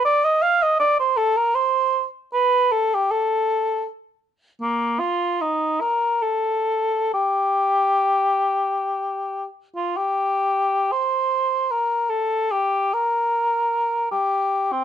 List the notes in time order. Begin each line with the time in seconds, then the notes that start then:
0.05 D5
0.24 D#5
0.42 F5
0.63 D#5
0.80 D5
0.99 C5
1.17 A4
1.37 A#4
1.55 C5
2.33 B4
2.72 A4
2.95 G4
3.11 A4
4.62 A#3
4.99 F4
5.41 D#4
5.81 A#4
6.22 A4
7.14 G4
9.76 F4
9.97 G4
10.92 C5
11.71 A#4
12.10 A4
12.52 G4
12.94 A#4
14.11 G4
14.72 C4